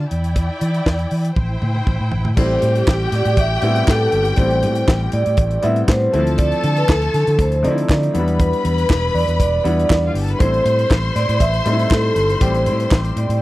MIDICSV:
0, 0, Header, 1, 6, 480
1, 0, Start_track
1, 0, Key_signature, 0, "minor"
1, 0, Tempo, 502092
1, 345, Time_signature, 4, 2, 24, 8
1, 12828, End_track
2, 0, Start_track
2, 0, Title_t, "String section"
2, 0, Program_c, 0, 48
2, 99, Note_on_c, 0, 74, 78
2, 100, Note_on_c, 0, 64, 74
2, 103, Note_on_c, 0, 79, 76
2, 1281, Note_off_c, 0, 64, 0
2, 1281, Note_off_c, 0, 74, 0
2, 1283, Note_off_c, 0, 79, 0
2, 1310, Note_on_c, 0, 79, 81
2, 1312, Note_on_c, 0, 64, 68
2, 1312, Note_on_c, 0, 72, 78
2, 2251, Note_off_c, 0, 79, 0
2, 2252, Note_off_c, 0, 64, 0
2, 2252, Note_off_c, 0, 72, 0
2, 2264, Note_on_c, 0, 79, 124
2, 2265, Note_on_c, 0, 67, 105
2, 5587, Note_off_c, 0, 67, 0
2, 5587, Note_off_c, 0, 79, 0
2, 5864, Note_on_c, 0, 81, 112
2, 5866, Note_on_c, 0, 69, 99
2, 7511, Note_off_c, 0, 81, 0
2, 7512, Note_off_c, 0, 69, 0
2, 7779, Note_on_c, 0, 71, 90
2, 7781, Note_on_c, 0, 83, 108
2, 9544, Note_off_c, 0, 71, 0
2, 9545, Note_off_c, 0, 83, 0
2, 9623, Note_on_c, 0, 77, 67
2, 9626, Note_on_c, 0, 65, 63
2, 9696, Note_on_c, 0, 67, 65
2, 9698, Note_on_c, 0, 79, 69
2, 9704, Note_off_c, 0, 77, 0
2, 9706, Note_off_c, 0, 65, 0
2, 9774, Note_on_c, 0, 69, 72
2, 9775, Note_on_c, 0, 81, 81
2, 9781, Note_off_c, 0, 67, 0
2, 9782, Note_off_c, 0, 79, 0
2, 9856, Note_on_c, 0, 71, 79
2, 9858, Note_on_c, 0, 83, 93
2, 9860, Note_off_c, 0, 69, 0
2, 9860, Note_off_c, 0, 81, 0
2, 9932, Note_on_c, 0, 72, 98
2, 9934, Note_on_c, 0, 84, 108
2, 9940, Note_off_c, 0, 71, 0
2, 9941, Note_off_c, 0, 83, 0
2, 12828, Note_off_c, 0, 72, 0
2, 12828, Note_off_c, 0, 84, 0
2, 12828, End_track
3, 0, Start_track
3, 0, Title_t, "Vibraphone"
3, 0, Program_c, 1, 11
3, 2273, Note_on_c, 1, 72, 107
3, 2718, Note_off_c, 1, 72, 0
3, 3015, Note_on_c, 1, 74, 99
3, 3249, Note_off_c, 1, 74, 0
3, 3249, Note_on_c, 1, 76, 109
3, 3717, Note_on_c, 1, 69, 98
3, 3733, Note_off_c, 1, 76, 0
3, 4055, Note_off_c, 1, 69, 0
3, 4193, Note_on_c, 1, 72, 90
3, 4637, Note_off_c, 1, 72, 0
3, 4908, Note_on_c, 1, 74, 104
3, 5386, Note_on_c, 1, 76, 110
3, 5402, Note_off_c, 1, 74, 0
3, 5494, Note_off_c, 1, 76, 0
3, 5630, Note_on_c, 1, 72, 105
3, 5970, Note_off_c, 1, 72, 0
3, 6101, Note_on_c, 1, 74, 100
3, 6480, Note_on_c, 1, 71, 84
3, 6482, Note_off_c, 1, 74, 0
3, 6582, Note_off_c, 1, 71, 0
3, 6587, Note_on_c, 1, 69, 93
3, 6928, Note_off_c, 1, 69, 0
3, 6958, Note_on_c, 1, 69, 83
3, 7072, Note_off_c, 1, 69, 0
3, 7074, Note_on_c, 1, 72, 97
3, 7301, Note_on_c, 1, 74, 97
3, 7317, Note_off_c, 1, 72, 0
3, 7749, Note_off_c, 1, 74, 0
3, 8034, Note_on_c, 1, 71, 95
3, 8743, Note_on_c, 1, 74, 115
3, 8771, Note_off_c, 1, 71, 0
3, 8964, Note_off_c, 1, 74, 0
3, 8976, Note_on_c, 1, 74, 102
3, 9662, Note_off_c, 1, 74, 0
3, 9945, Note_on_c, 1, 72, 117
3, 10391, Note_off_c, 1, 72, 0
3, 10665, Note_on_c, 1, 74, 110
3, 10903, Note_on_c, 1, 76, 110
3, 10912, Note_off_c, 1, 74, 0
3, 11392, Note_on_c, 1, 69, 92
3, 11398, Note_off_c, 1, 76, 0
3, 11730, Note_off_c, 1, 69, 0
3, 11870, Note_on_c, 1, 72, 91
3, 12313, Note_off_c, 1, 72, 0
3, 12600, Note_on_c, 1, 74, 77
3, 12828, Note_off_c, 1, 74, 0
3, 12828, End_track
4, 0, Start_track
4, 0, Title_t, "Grand piano"
4, 0, Program_c, 2, 0
4, 2263, Note_on_c, 2, 55, 78
4, 2269, Note_on_c, 2, 57, 67
4, 2272, Note_on_c, 2, 60, 73
4, 2276, Note_on_c, 2, 64, 90
4, 2448, Control_c, 2, 64, 127
4, 3026, Note_off_c, 2, 55, 0
4, 3029, Note_off_c, 2, 57, 0
4, 3031, Note_off_c, 2, 60, 0
4, 3033, Note_off_c, 2, 64, 0
4, 3461, Note_on_c, 2, 55, 83
4, 3468, Note_on_c, 2, 59, 77
4, 3471, Note_on_c, 2, 60, 81
4, 3476, Note_on_c, 2, 64, 98
4, 4038, Note_off_c, 2, 55, 0
4, 4042, Note_off_c, 2, 59, 0
4, 4043, Note_off_c, 2, 60, 0
4, 4046, Note_off_c, 2, 64, 0
4, 4175, Note_on_c, 2, 55, 75
4, 4180, Note_on_c, 2, 60, 73
4, 4182, Note_on_c, 2, 57, 71
4, 4187, Note_on_c, 2, 64, 81
4, 4941, Note_off_c, 2, 55, 0
4, 4944, Note_off_c, 2, 60, 0
4, 4945, Note_off_c, 2, 57, 0
4, 4947, Note_off_c, 2, 64, 0
4, 5375, Note_on_c, 2, 55, 85
4, 5379, Note_on_c, 2, 59, 75
4, 5385, Note_on_c, 2, 60, 78
4, 5389, Note_on_c, 2, 64, 97
4, 5853, Note_off_c, 2, 60, 0
4, 5859, Note_off_c, 2, 64, 0
4, 5861, Note_off_c, 2, 55, 0
4, 5861, Note_on_c, 2, 52, 68
4, 5861, Note_on_c, 2, 57, 84
4, 5863, Note_off_c, 2, 59, 0
4, 5867, Note_on_c, 2, 60, 87
4, 5873, Note_on_c, 2, 64, 94
4, 5878, Control_c, 2, 64, 0
4, 5916, Note_on_c, 2, 53, 97
4, 5925, Note_off_c, 2, 52, 0
4, 6034, Control_c, 2, 64, 127
4, 6634, Note_off_c, 2, 57, 0
4, 6638, Note_off_c, 2, 60, 0
4, 6641, Note_off_c, 2, 64, 0
4, 6662, Note_off_c, 2, 53, 0
4, 7292, Note_on_c, 2, 53, 88
4, 7300, Note_on_c, 2, 57, 81
4, 7307, Note_on_c, 2, 60, 77
4, 7308, Note_on_c, 2, 63, 79
4, 7366, Note_on_c, 2, 64, 97
4, 7368, Note_off_c, 2, 63, 0
4, 7775, Note_off_c, 2, 64, 0
4, 7777, Note_on_c, 2, 54, 67
4, 7779, Note_off_c, 2, 53, 0
4, 7783, Note_off_c, 2, 57, 0
4, 7785, Note_on_c, 2, 59, 80
4, 7786, Note_off_c, 2, 60, 0
4, 7789, Note_on_c, 2, 64, 86
4, 7790, Note_on_c, 2, 62, 80
4, 7798, Control_c, 2, 64, 0
4, 7835, Note_on_c, 2, 55, 87
4, 7842, Note_off_c, 2, 54, 0
4, 7961, Control_c, 2, 64, 127
4, 8556, Note_off_c, 2, 59, 0
4, 8558, Note_off_c, 2, 62, 0
4, 8558, Note_off_c, 2, 64, 0
4, 8581, Note_off_c, 2, 55, 0
4, 9215, Note_on_c, 2, 55, 82
4, 9220, Note_on_c, 2, 59, 81
4, 9225, Note_on_c, 2, 62, 82
4, 9233, Note_on_c, 2, 64, 90
4, 9794, Note_off_c, 2, 55, 0
4, 9796, Note_off_c, 2, 59, 0
4, 9799, Note_off_c, 2, 62, 0
4, 9803, Note_off_c, 2, 64, 0
4, 9931, Note_on_c, 2, 55, 72
4, 9938, Note_on_c, 2, 57, 75
4, 9945, Note_on_c, 2, 60, 69
4, 9947, Note_on_c, 2, 64, 88
4, 9959, Control_c, 2, 64, 0
4, 10113, Control_c, 2, 64, 127
4, 10698, Note_off_c, 2, 55, 0
4, 10701, Note_off_c, 2, 57, 0
4, 10704, Note_off_c, 2, 60, 0
4, 10706, Note_off_c, 2, 64, 0
4, 11142, Note_on_c, 2, 55, 86
4, 11144, Note_on_c, 2, 57, 73
4, 11150, Note_on_c, 2, 60, 75
4, 11155, Note_on_c, 2, 63, 80
4, 11211, Note_off_c, 2, 63, 0
4, 11211, Note_on_c, 2, 64, 102
4, 11717, Note_off_c, 2, 55, 0
4, 11718, Note_off_c, 2, 57, 0
4, 11721, Note_off_c, 2, 60, 0
4, 11751, Note_off_c, 2, 64, 0
4, 11859, Note_on_c, 2, 55, 72
4, 11862, Note_on_c, 2, 57, 70
4, 11869, Note_on_c, 2, 60, 72
4, 11872, Note_on_c, 2, 67, 88
4, 12621, Note_off_c, 2, 55, 0
4, 12623, Note_off_c, 2, 57, 0
4, 12627, Note_off_c, 2, 60, 0
4, 12628, Note_off_c, 2, 67, 0
4, 12828, End_track
5, 0, Start_track
5, 0, Title_t, "Fingered electric bass"
5, 0, Program_c, 3, 33
5, 109, Note_on_c, 3, 40, 88
5, 460, Note_off_c, 3, 40, 0
5, 587, Note_on_c, 3, 52, 92
5, 763, Note_off_c, 3, 52, 0
5, 824, Note_on_c, 3, 40, 100
5, 1001, Note_off_c, 3, 40, 0
5, 1066, Note_on_c, 3, 52, 87
5, 1242, Note_off_c, 3, 52, 0
5, 1304, Note_on_c, 3, 33, 92
5, 1481, Note_off_c, 3, 33, 0
5, 1549, Note_on_c, 3, 45, 101
5, 1724, Note_off_c, 3, 45, 0
5, 1789, Note_on_c, 3, 33, 89
5, 1882, Note_off_c, 3, 33, 0
5, 1914, Note_on_c, 3, 45, 92
5, 1997, Note_off_c, 3, 45, 0
5, 2028, Note_on_c, 3, 33, 95
5, 2121, Note_off_c, 3, 33, 0
5, 2158, Note_on_c, 3, 45, 92
5, 2240, Note_off_c, 3, 45, 0
5, 2267, Note_on_c, 3, 33, 107
5, 2444, Note_off_c, 3, 33, 0
5, 2510, Note_on_c, 3, 45, 107
5, 2686, Note_off_c, 3, 45, 0
5, 2749, Note_on_c, 3, 33, 97
5, 2924, Note_off_c, 3, 33, 0
5, 2984, Note_on_c, 3, 45, 96
5, 3079, Note_off_c, 3, 45, 0
5, 3113, Note_on_c, 3, 45, 97
5, 3197, Note_off_c, 3, 45, 0
5, 3224, Note_on_c, 3, 33, 100
5, 3401, Note_off_c, 3, 33, 0
5, 3464, Note_on_c, 3, 45, 105
5, 3641, Note_off_c, 3, 45, 0
5, 3710, Note_on_c, 3, 45, 104
5, 3885, Note_off_c, 3, 45, 0
5, 3944, Note_on_c, 3, 31, 95
5, 4121, Note_off_c, 3, 31, 0
5, 4186, Note_on_c, 3, 33, 99
5, 4427, Note_on_c, 3, 45, 101
5, 4441, Note_off_c, 3, 33, 0
5, 4603, Note_off_c, 3, 45, 0
5, 4665, Note_on_c, 3, 33, 92
5, 4841, Note_off_c, 3, 33, 0
5, 4908, Note_on_c, 3, 45, 106
5, 5001, Note_off_c, 3, 45, 0
5, 5034, Note_on_c, 3, 45, 87
5, 5117, Note_off_c, 3, 45, 0
5, 5142, Note_on_c, 3, 33, 98
5, 5319, Note_off_c, 3, 33, 0
5, 5390, Note_on_c, 3, 45, 99
5, 5564, Note_off_c, 3, 45, 0
5, 5623, Note_on_c, 3, 45, 106
5, 5800, Note_off_c, 3, 45, 0
5, 5868, Note_on_c, 3, 38, 107
5, 6218, Note_off_c, 3, 38, 0
5, 6347, Note_on_c, 3, 50, 108
5, 6522, Note_off_c, 3, 50, 0
5, 6586, Note_on_c, 3, 38, 92
5, 6762, Note_off_c, 3, 38, 0
5, 6827, Note_on_c, 3, 50, 92
5, 6920, Note_off_c, 3, 50, 0
5, 6954, Note_on_c, 3, 50, 86
5, 7037, Note_off_c, 3, 50, 0
5, 7062, Note_on_c, 3, 38, 107
5, 7306, Note_on_c, 3, 50, 102
5, 7320, Note_off_c, 3, 38, 0
5, 7481, Note_off_c, 3, 50, 0
5, 7548, Note_on_c, 3, 50, 105
5, 7723, Note_off_c, 3, 50, 0
5, 7790, Note_on_c, 3, 40, 108
5, 8139, Note_off_c, 3, 40, 0
5, 8268, Note_on_c, 3, 40, 108
5, 8443, Note_off_c, 3, 40, 0
5, 8510, Note_on_c, 3, 28, 100
5, 8684, Note_off_c, 3, 28, 0
5, 8743, Note_on_c, 3, 40, 103
5, 8837, Note_off_c, 3, 40, 0
5, 8870, Note_on_c, 3, 40, 83
5, 8953, Note_off_c, 3, 40, 0
5, 8984, Note_on_c, 3, 28, 110
5, 9160, Note_off_c, 3, 28, 0
5, 9223, Note_on_c, 3, 40, 104
5, 9399, Note_off_c, 3, 40, 0
5, 9465, Note_on_c, 3, 40, 106
5, 9641, Note_off_c, 3, 40, 0
5, 9696, Note_on_c, 3, 31, 87
5, 9875, Note_off_c, 3, 31, 0
5, 9950, Note_on_c, 3, 33, 87
5, 10123, Note_off_c, 3, 33, 0
5, 10184, Note_on_c, 3, 45, 104
5, 10360, Note_off_c, 3, 45, 0
5, 10428, Note_on_c, 3, 33, 91
5, 10602, Note_off_c, 3, 33, 0
5, 10667, Note_on_c, 3, 45, 106
5, 10759, Note_off_c, 3, 45, 0
5, 10793, Note_on_c, 3, 45, 103
5, 10875, Note_off_c, 3, 45, 0
5, 10904, Note_on_c, 3, 33, 99
5, 11080, Note_off_c, 3, 33, 0
5, 11146, Note_on_c, 3, 45, 96
5, 11321, Note_off_c, 3, 45, 0
5, 11385, Note_on_c, 3, 45, 103
5, 11560, Note_off_c, 3, 45, 0
5, 11623, Note_on_c, 3, 31, 86
5, 11799, Note_off_c, 3, 31, 0
5, 11867, Note_on_c, 3, 33, 101
5, 12109, Note_on_c, 3, 45, 109
5, 12123, Note_off_c, 3, 33, 0
5, 12283, Note_off_c, 3, 45, 0
5, 12346, Note_on_c, 3, 33, 107
5, 12521, Note_off_c, 3, 33, 0
5, 12585, Note_on_c, 3, 45, 101
5, 12678, Note_off_c, 3, 45, 0
5, 12708, Note_on_c, 3, 45, 92
5, 12791, Note_off_c, 3, 45, 0
5, 12828, End_track
6, 0, Start_track
6, 0, Title_t, "Drums"
6, 106, Note_on_c, 9, 42, 57
6, 201, Note_off_c, 9, 42, 0
6, 230, Note_on_c, 9, 42, 39
6, 325, Note_off_c, 9, 42, 0
6, 341, Note_on_c, 9, 42, 64
6, 344, Note_on_c, 9, 36, 94
6, 437, Note_off_c, 9, 42, 0
6, 440, Note_off_c, 9, 36, 0
6, 585, Note_on_c, 9, 42, 66
6, 681, Note_off_c, 9, 42, 0
6, 710, Note_on_c, 9, 42, 39
6, 806, Note_off_c, 9, 42, 0
6, 825, Note_on_c, 9, 36, 105
6, 826, Note_on_c, 9, 38, 104
6, 921, Note_off_c, 9, 36, 0
6, 922, Note_off_c, 9, 38, 0
6, 946, Note_on_c, 9, 42, 34
6, 1042, Note_off_c, 9, 42, 0
6, 1060, Note_on_c, 9, 46, 69
6, 1155, Note_off_c, 9, 46, 0
6, 1192, Note_on_c, 9, 42, 45
6, 1287, Note_off_c, 9, 42, 0
6, 1304, Note_on_c, 9, 36, 93
6, 1308, Note_on_c, 9, 48, 45
6, 1400, Note_off_c, 9, 36, 0
6, 1404, Note_off_c, 9, 48, 0
6, 1547, Note_on_c, 9, 47, 62
6, 1643, Note_off_c, 9, 47, 0
6, 1671, Note_on_c, 9, 47, 50
6, 1766, Note_off_c, 9, 47, 0
6, 1786, Note_on_c, 9, 45, 72
6, 1787, Note_on_c, 9, 36, 96
6, 1882, Note_off_c, 9, 36, 0
6, 1882, Note_off_c, 9, 45, 0
6, 2023, Note_on_c, 9, 43, 78
6, 2118, Note_off_c, 9, 43, 0
6, 2149, Note_on_c, 9, 43, 74
6, 2245, Note_off_c, 9, 43, 0
6, 2264, Note_on_c, 9, 49, 95
6, 2268, Note_on_c, 9, 36, 103
6, 2360, Note_off_c, 9, 49, 0
6, 2363, Note_off_c, 9, 36, 0
6, 2505, Note_on_c, 9, 42, 76
6, 2600, Note_off_c, 9, 42, 0
6, 2634, Note_on_c, 9, 42, 39
6, 2729, Note_off_c, 9, 42, 0
6, 2748, Note_on_c, 9, 36, 119
6, 2751, Note_on_c, 9, 38, 116
6, 2751, Note_on_c, 9, 39, 92
6, 2843, Note_off_c, 9, 36, 0
6, 2846, Note_off_c, 9, 38, 0
6, 2847, Note_off_c, 9, 39, 0
6, 2985, Note_on_c, 9, 42, 78
6, 2991, Note_on_c, 9, 38, 40
6, 3080, Note_off_c, 9, 42, 0
6, 3087, Note_off_c, 9, 38, 0
6, 3111, Note_on_c, 9, 42, 46
6, 3206, Note_off_c, 9, 42, 0
6, 3222, Note_on_c, 9, 42, 71
6, 3223, Note_on_c, 9, 36, 106
6, 3317, Note_off_c, 9, 42, 0
6, 3319, Note_off_c, 9, 36, 0
6, 3459, Note_on_c, 9, 42, 72
6, 3555, Note_off_c, 9, 42, 0
6, 3592, Note_on_c, 9, 42, 41
6, 3687, Note_off_c, 9, 42, 0
6, 3706, Note_on_c, 9, 36, 110
6, 3709, Note_on_c, 9, 39, 101
6, 3712, Note_on_c, 9, 38, 108
6, 3802, Note_off_c, 9, 36, 0
6, 3805, Note_off_c, 9, 39, 0
6, 3807, Note_off_c, 9, 38, 0
6, 3940, Note_on_c, 9, 42, 71
6, 4036, Note_off_c, 9, 42, 0
6, 4062, Note_on_c, 9, 42, 46
6, 4158, Note_off_c, 9, 42, 0
6, 4172, Note_on_c, 9, 42, 68
6, 4183, Note_on_c, 9, 36, 105
6, 4267, Note_off_c, 9, 42, 0
6, 4279, Note_off_c, 9, 36, 0
6, 4307, Note_on_c, 9, 42, 33
6, 4403, Note_off_c, 9, 42, 0
6, 4424, Note_on_c, 9, 42, 74
6, 4520, Note_off_c, 9, 42, 0
6, 4544, Note_on_c, 9, 42, 44
6, 4640, Note_off_c, 9, 42, 0
6, 4665, Note_on_c, 9, 36, 118
6, 4667, Note_on_c, 9, 38, 113
6, 4670, Note_on_c, 9, 39, 94
6, 4761, Note_off_c, 9, 36, 0
6, 4763, Note_off_c, 9, 38, 0
6, 4766, Note_off_c, 9, 39, 0
6, 4895, Note_on_c, 9, 42, 72
6, 4990, Note_off_c, 9, 42, 0
6, 5027, Note_on_c, 9, 42, 48
6, 5123, Note_off_c, 9, 42, 0
6, 5135, Note_on_c, 9, 42, 79
6, 5141, Note_on_c, 9, 36, 114
6, 5230, Note_off_c, 9, 42, 0
6, 5236, Note_off_c, 9, 36, 0
6, 5264, Note_on_c, 9, 42, 38
6, 5360, Note_off_c, 9, 42, 0
6, 5379, Note_on_c, 9, 42, 81
6, 5475, Note_off_c, 9, 42, 0
6, 5508, Note_on_c, 9, 42, 42
6, 5603, Note_off_c, 9, 42, 0
6, 5623, Note_on_c, 9, 36, 119
6, 5627, Note_on_c, 9, 39, 100
6, 5629, Note_on_c, 9, 38, 109
6, 5719, Note_off_c, 9, 36, 0
6, 5722, Note_off_c, 9, 39, 0
6, 5724, Note_off_c, 9, 38, 0
6, 5866, Note_on_c, 9, 42, 71
6, 5961, Note_off_c, 9, 42, 0
6, 5992, Note_on_c, 9, 42, 47
6, 6088, Note_off_c, 9, 42, 0
6, 6099, Note_on_c, 9, 42, 80
6, 6105, Note_on_c, 9, 36, 111
6, 6195, Note_off_c, 9, 42, 0
6, 6201, Note_off_c, 9, 36, 0
6, 6232, Note_on_c, 9, 42, 37
6, 6327, Note_off_c, 9, 42, 0
6, 6344, Note_on_c, 9, 42, 75
6, 6440, Note_off_c, 9, 42, 0
6, 6469, Note_on_c, 9, 42, 41
6, 6564, Note_off_c, 9, 42, 0
6, 6585, Note_on_c, 9, 36, 117
6, 6586, Note_on_c, 9, 39, 102
6, 6592, Note_on_c, 9, 38, 113
6, 6681, Note_off_c, 9, 36, 0
6, 6682, Note_off_c, 9, 39, 0
6, 6687, Note_off_c, 9, 38, 0
6, 6709, Note_on_c, 9, 42, 39
6, 6805, Note_off_c, 9, 42, 0
6, 6827, Note_on_c, 9, 42, 67
6, 6833, Note_on_c, 9, 38, 41
6, 6923, Note_off_c, 9, 42, 0
6, 6929, Note_off_c, 9, 38, 0
6, 6952, Note_on_c, 9, 42, 52
6, 7048, Note_off_c, 9, 42, 0
6, 7062, Note_on_c, 9, 36, 100
6, 7064, Note_on_c, 9, 42, 70
6, 7158, Note_off_c, 9, 36, 0
6, 7159, Note_off_c, 9, 42, 0
6, 7187, Note_on_c, 9, 42, 37
6, 7283, Note_off_c, 9, 42, 0
6, 7309, Note_on_c, 9, 42, 76
6, 7405, Note_off_c, 9, 42, 0
6, 7436, Note_on_c, 9, 42, 47
6, 7532, Note_off_c, 9, 42, 0
6, 7546, Note_on_c, 9, 36, 98
6, 7546, Note_on_c, 9, 39, 107
6, 7558, Note_on_c, 9, 38, 105
6, 7641, Note_off_c, 9, 36, 0
6, 7642, Note_off_c, 9, 39, 0
6, 7654, Note_off_c, 9, 38, 0
6, 7679, Note_on_c, 9, 42, 40
6, 7774, Note_off_c, 9, 42, 0
6, 7788, Note_on_c, 9, 42, 64
6, 7884, Note_off_c, 9, 42, 0
6, 7913, Note_on_c, 9, 42, 46
6, 8009, Note_off_c, 9, 42, 0
6, 8026, Note_on_c, 9, 36, 104
6, 8026, Note_on_c, 9, 42, 79
6, 8122, Note_off_c, 9, 36, 0
6, 8122, Note_off_c, 9, 42, 0
6, 8157, Note_on_c, 9, 42, 34
6, 8253, Note_off_c, 9, 42, 0
6, 8268, Note_on_c, 9, 42, 74
6, 8364, Note_off_c, 9, 42, 0
6, 8396, Note_on_c, 9, 42, 44
6, 8492, Note_off_c, 9, 42, 0
6, 8507, Note_on_c, 9, 36, 108
6, 8507, Note_on_c, 9, 39, 98
6, 8514, Note_on_c, 9, 38, 110
6, 8602, Note_off_c, 9, 36, 0
6, 8603, Note_off_c, 9, 39, 0
6, 8610, Note_off_c, 9, 38, 0
6, 8750, Note_on_c, 9, 46, 71
6, 8846, Note_off_c, 9, 46, 0
6, 8878, Note_on_c, 9, 42, 53
6, 8974, Note_off_c, 9, 42, 0
6, 8984, Note_on_c, 9, 36, 101
6, 8988, Note_on_c, 9, 42, 79
6, 9079, Note_off_c, 9, 36, 0
6, 9083, Note_off_c, 9, 42, 0
6, 9228, Note_on_c, 9, 42, 71
6, 9324, Note_off_c, 9, 42, 0
6, 9365, Note_on_c, 9, 42, 43
6, 9460, Note_off_c, 9, 42, 0
6, 9466, Note_on_c, 9, 36, 109
6, 9466, Note_on_c, 9, 39, 113
6, 9476, Note_on_c, 9, 38, 109
6, 9561, Note_off_c, 9, 36, 0
6, 9561, Note_off_c, 9, 39, 0
6, 9572, Note_off_c, 9, 38, 0
6, 9707, Note_on_c, 9, 46, 67
6, 9803, Note_off_c, 9, 46, 0
6, 9834, Note_on_c, 9, 42, 48
6, 9929, Note_off_c, 9, 42, 0
6, 9945, Note_on_c, 9, 42, 73
6, 9946, Note_on_c, 9, 36, 122
6, 10040, Note_off_c, 9, 42, 0
6, 10041, Note_off_c, 9, 36, 0
6, 10076, Note_on_c, 9, 42, 37
6, 10172, Note_off_c, 9, 42, 0
6, 10188, Note_on_c, 9, 42, 79
6, 10284, Note_off_c, 9, 42, 0
6, 10314, Note_on_c, 9, 42, 43
6, 10410, Note_off_c, 9, 42, 0
6, 10426, Note_on_c, 9, 36, 115
6, 10428, Note_on_c, 9, 39, 89
6, 10433, Note_on_c, 9, 38, 114
6, 10522, Note_off_c, 9, 36, 0
6, 10524, Note_off_c, 9, 39, 0
6, 10529, Note_off_c, 9, 38, 0
6, 10669, Note_on_c, 9, 42, 75
6, 10675, Note_on_c, 9, 38, 42
6, 10765, Note_off_c, 9, 42, 0
6, 10771, Note_off_c, 9, 38, 0
6, 10795, Note_on_c, 9, 42, 50
6, 10890, Note_off_c, 9, 42, 0
6, 10902, Note_on_c, 9, 36, 103
6, 10905, Note_on_c, 9, 42, 77
6, 10998, Note_off_c, 9, 36, 0
6, 11001, Note_off_c, 9, 42, 0
6, 11028, Note_on_c, 9, 42, 36
6, 11123, Note_off_c, 9, 42, 0
6, 11144, Note_on_c, 9, 42, 75
6, 11239, Note_off_c, 9, 42, 0
6, 11274, Note_on_c, 9, 42, 41
6, 11369, Note_off_c, 9, 42, 0
6, 11384, Note_on_c, 9, 36, 112
6, 11384, Note_on_c, 9, 39, 101
6, 11395, Note_on_c, 9, 38, 103
6, 11479, Note_off_c, 9, 39, 0
6, 11480, Note_off_c, 9, 36, 0
6, 11490, Note_off_c, 9, 38, 0
6, 11625, Note_on_c, 9, 42, 61
6, 11721, Note_off_c, 9, 42, 0
6, 11753, Note_on_c, 9, 42, 45
6, 11849, Note_off_c, 9, 42, 0
6, 11864, Note_on_c, 9, 42, 77
6, 11865, Note_on_c, 9, 36, 112
6, 11960, Note_off_c, 9, 42, 0
6, 11961, Note_off_c, 9, 36, 0
6, 11994, Note_on_c, 9, 42, 38
6, 12089, Note_off_c, 9, 42, 0
6, 12106, Note_on_c, 9, 42, 75
6, 12201, Note_off_c, 9, 42, 0
6, 12235, Note_on_c, 9, 42, 42
6, 12331, Note_off_c, 9, 42, 0
6, 12344, Note_on_c, 9, 39, 93
6, 12346, Note_on_c, 9, 36, 124
6, 12354, Note_on_c, 9, 38, 110
6, 12440, Note_off_c, 9, 39, 0
6, 12441, Note_off_c, 9, 36, 0
6, 12449, Note_off_c, 9, 38, 0
6, 12472, Note_on_c, 9, 42, 39
6, 12567, Note_off_c, 9, 42, 0
6, 12588, Note_on_c, 9, 42, 75
6, 12684, Note_off_c, 9, 42, 0
6, 12715, Note_on_c, 9, 42, 52
6, 12811, Note_off_c, 9, 42, 0
6, 12828, End_track
0, 0, End_of_file